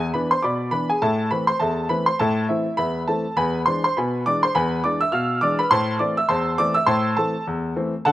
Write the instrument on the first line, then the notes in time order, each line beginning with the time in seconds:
upright piano
Already playing: G#4 E5
0.14 E3 B3 D4 B4 B5
0.31 C5 C6
0.42 B2 D5 B5 D6
0.71 E3 B3 D4 B4 B5
0.90 G#4 G#5
1.02 A2 A4 E5 A5
1.31 E3 A3 C4 B4 B5
1.47 C5 C6
1.60 E2 A4 E5 A5
1.89 E3 A3 C4 B4 B5
2.06 C5 C6
2.19 A2 A4 E5 A5
2.49 E3 A3 C4 E4 E5
2.77 E2 B4 E5 B5
3.08 E3 A3 C4 A4 A5
3.36 E2 B4 G#5 B5
3.66 E3 G#3 D4 C5 C6
3.84 C5 C6
3.97 B2 B4 G#5 B5
4.26 E3 G#3 D4 D5 D6
4.43 C5 C6
4.55 E2 B4 G#5 B5
4.84 E3 G#3 D4 D5 D6
5.01 E5 E6
5.12 B2 F5 F6
5.41 E3 G#3 D4 D5 D6
5.59 B4 B5
5.71 A2 C5 A5 C6
5.99 E3 A3 C4 D5 D6
6.17 E5 E6
6.29 E2 C5 A5 C6
6.58 E3 A3 C4 D5 D6
6.74 E5 E6
6.86 A2 C5 A5 C6
7.17 E3 A3 C4 A4 A5
7.47 E2
7.76 E3 A3 C4
8.05 D3 A4 F#5 A5